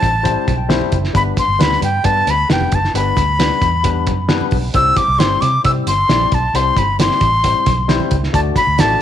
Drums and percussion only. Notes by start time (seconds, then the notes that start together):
0.03 kick, closed hi-hat
0.25 kick, closed hi-hat
0.47 kick, closed hi-hat, muted conga, low conga
0.70 snare, closed hi-hat, high conga
0.81 high conga
0.92 kick, closed hi-hat
1.04 snare
1.15 kick, closed hi-hat, muted conga
1.37 kick, closed hi-hat, muted conga
1.60 snare, closed hi-hat, high conga
1.72 snare
1.81 closed hi-hat, low conga
2.04 kick, closed hi-hat
2.27 closed hi-hat, muted conga
2.50 snare, closed hi-hat, high conga
2.61 high conga
2.72 kick, closed hi-hat
2.84 snare
2.95 closed hi-hat, muted conga
3.16 kick, closed hi-hat, muted conga
3.40 snare, closed hi-hat, high conga
3.62 kick, closed hi-hat
3.84 kick, closed hi-hat
4.07 kick, closed hi-hat, muted conga, low conga
4.29 snare, closed hi-hat, high conga
4.41 high conga
4.51 kick, open hi-hat, high conga
4.74 kick, closed hi-hat, muted conga
4.97 kick, closed hi-hat, muted conga
5.20 snare, closed hi-hat, high conga
5.41 closed hi-hat, low conga
5.65 kick, closed hi-hat
5.87 closed hi-hat, muted conga
6.09 snare, closed hi-hat, high conga
6.21 high conga
6.32 kick, closed hi-hat
6.55 closed hi-hat, muted conga
6.77 kick, closed hi-hat, muted conga
6.99 snare, closed hi-hat, high conga
7.11 snare
7.21 kick, closed hi-hat
7.44 kick, closed hi-hat
7.66 kick, closed hi-hat, muted conga, low conga
7.89 snare, closed hi-hat, high conga
8.00 high conga
8.11 kick, closed hi-hat
8.23 snare
8.34 kick, closed hi-hat
8.56 kick, closed hi-hat, muted conga
8.78 snare, closed hi-hat, high conga